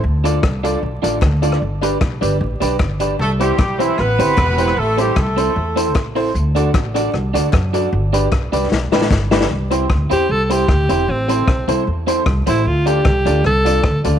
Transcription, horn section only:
X:1
M:4/4
L:1/8
Q:1/4=152
K:C
V:1 name="Horn section"
z8 | z8 | [A,A] [G,G]2 [E,E] [B,B]4 | [A,A] [G,G] [A,A]4 z2 |
z8 | z8 | z8 | z8 |
z8 |]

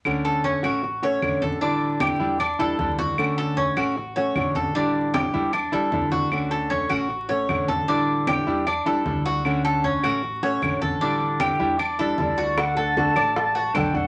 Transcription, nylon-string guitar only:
X:1
M:4/4
L:1/8
Q:1/4=153
K:D
V:1 name="Nylon-string guitar"
[D,A,CF]3 [A,CF] z [A,CF] [D,A,CF]2 | [D,G,DE]3 [G,DE] z [G,DE] [D,G,DE]2 | [D,A,CF]3 [A,CF] z [A,CF] [D,A,CF]2 | [D,G,DE]3 [G,DE] z [G,DE] [D,G,DE]2 |
[D,A,CF]3 [A,CF] z [A,CF] [D,A,CF]2 | [D,G,DE]3 [G,DE] z [G,DE] [D,G,DE]2 | [D,A,CF]3 [A,CF] z [A,CF] [D,A,CF]2 | [D,G,DE]3 [G,DE] z [G,DE] [D,G,DE]2 |
[D,A,DF] [A,DF] [D,A,DF] F z2 [D,A,DF] [A,DF] |]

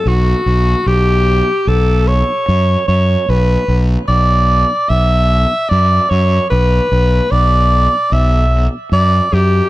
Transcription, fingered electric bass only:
X:1
M:4/4
L:1/8
Q:1/4=74
K:Bm
V:1 name="Fingered electric bass" clef=bass
B,,, B,,, B,,,2 B,,,2 F,, F,, | B,,, B,,, B,,,2 B,,,2 F,, F,, | B,,, B,,, B,,,2 B,,,2 F,, F,, |]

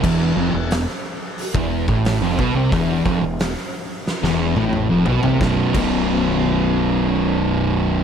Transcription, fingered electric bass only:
X:1
M:4/4
L:1/16
Q:1/4=89
K:Edor
V:1 name="Fingered electric bass" clef=bass
E,,,2 ^E,,, =E,,,2 z4 E,,,2 A,,,2 ^E,,, B,,, =C,, | E,,,2 ^E,,, =E,,,2 z4 E,,,2 A,,,2 ^E,,, B,,, =C,, | B,,,, z B,,,,12- B,,,,2 |]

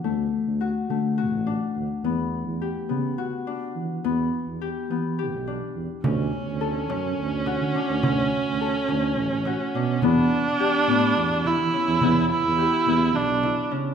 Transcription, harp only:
X:1
M:7/8
L:1/8
Q:1/4=105
K:D
V:1 name="Harp"
A,2 F A, F D2 | B,2 G B, F D2 | B,2 G B, G D2 | C2 A C2 F D |
C2 A C2 F D | B,2 G B,2 E C | B,2 G B,2 E C |]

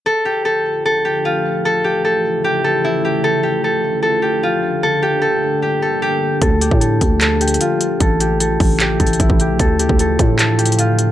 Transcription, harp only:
X:1
M:4/4
L:1/8
Q:1/4=151
K:Dm
V:1 name="Harp"
A G A2 A G F2 | A G A2 G A E G | A G A2 A G F2 | A G A2 G A G z |
A G A2 A G F2 | A G A2 G A E G | A G A2 A G F2 |]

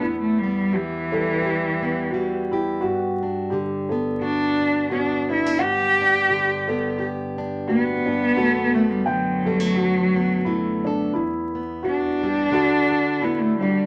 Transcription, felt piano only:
X:1
M:4/4
L:1/8
Q:"Swing" 1/4=86
K:G
V:1 name="Felt piano"
E2 G A G2 F E | F2 G A z2 F D | f2 G A G2 F D | F2 g A F2 E D |
E2 F G F2 E D |]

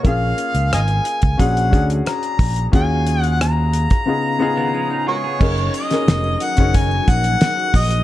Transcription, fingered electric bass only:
X:1
M:4/4
L:1/16
Q:1/4=90
K:F#
V:1 name="Fingered electric bass" clef=bass
A,,,2 z C,, G,,,2 z C,, A,,,2 =D,,2 z2 A,,,2 | D,,6- D,, z8 z | F,,,2 z2 E,,,2 z F,,,3 A,,,2 z2 A,,,2 |]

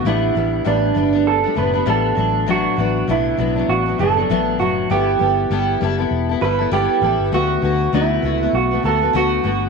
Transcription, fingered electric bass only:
X:1
M:4/4
L:1/16
Q:"Swing 16ths" 1/4=99
K:D
V:1 name="Fingered electric bass" clef=bass
A,,,2 A,,,2 A,,,2 G,,,4 F,,,2 A,,,2 A,,,2- | A,,,2 A,,,2 B,,,2 B,,,2 A,,,2 F,,,2 A,,,2 F,,,2 | G,,,2 G,,,2 G,,,2 F,,,2 E,,,2 G,,,2 G,,, z A,,, G,,, | D,,2 D,,2 D,,2 C,,2 B,,,2 D,,2 D,,2 G,,,2 |]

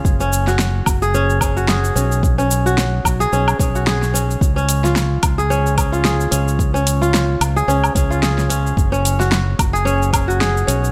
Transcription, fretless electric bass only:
X:1
M:4/4
L:1/8
Q:"Swing 16ths" 1/4=110
K:C#
V:1 name="Fretless electric bass" clef=bass
F,,,3 F,,,4 =B,,,- | =B,,,3 B,,, B,,, B,,,3 | C,,3 C,,4 C,,- | C,,3 C,, C,, C,,3 |
F,,,3 F,,,4 =B,,, |]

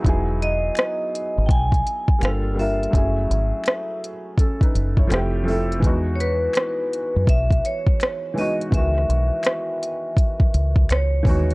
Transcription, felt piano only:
X:1
M:4/4
L:1/16
Q:"Swing 16ths" 1/4=83
K:E
V:1 name="Felt piano"
z16 | z8 [CA] [DB]2 [Ec]2 z3 | z16 | z16 |]
V:2 name="Felt piano"
[F,B,DEG]6 z6 [=G,_B,=D=FA]2 [G,B,DF_B]2 | [F,A,CEG]6 z6 [=F,A,=CE=G]2 [F,A,CEA]2 | [E,G,B,DF]6 z8 [E,G,B,DF]2 | [D,E,G,B,F]6 z8 [E,G,B,DF]2 |]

